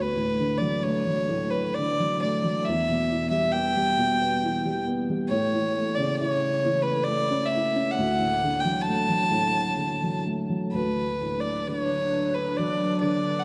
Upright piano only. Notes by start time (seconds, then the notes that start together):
Already playing: D2
0.15 A2
0.39 D3
0.61 F#3
0.85 A3
1.07 F#3
1.28 A2
1.54 A4
1.78 D3
2.00 F#3
2.22 A3
2.44 F#3
2.68 E2
2.89 B2
3.10 E3
3.31 G3
3.53 B3
3.76 G3
3.98 B2
4.21 B4
4.43 E3
4.65 G3
4.86 B3
5.10 G3
5.31 A2
5.54 E3
5.77 A3
5.98 C#3
6.20 E4
6.64 E3
6.88 A4
7.08 A3
7.31 C#4
7.54 E4
7.76 C#4
7.98 D2
8.19 A2
8.44 D3
8.65 F#3
8.88 A3
9.09 F#3
9.30 A2
9.54 A4
9.77 D3
10.04 F#3
10.25 A3
10.50 F#3
10.74 D2
11.21 A2
11.68 D3
12.59 F#3
13.02 D3